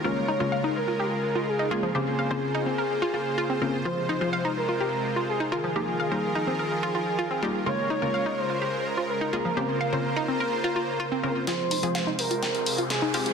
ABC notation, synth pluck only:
X:1
M:4/4
L:1/16
Q:1/4=126
K:Fm
V:1 name="Synth pluck"
[D,A,B,DFB]3 [D,A,B,DFB] z8 z2 [A,B,DFA]2 | [D,B,CDFc]3 [D,B,CDFc] z8 z2 [D,B,CDFB]2 | [F,FAc]3 [F,FAc] z8 z2 [E,FAB]2 | [F,B,EFB]3 [G,B,EFB] z8 z2 [G,B,EFG]2 |
[D,A,B,DFB]3 [D,A,B,DFB] z8 z2 [A,B,DFA]2 | [D,B,CDFc]3 [D,B,CDFc] z8 z2 [D,B,CDFB]2 | [F,CFA]3 [F,CFA] z8 z2 [CFG]2 |]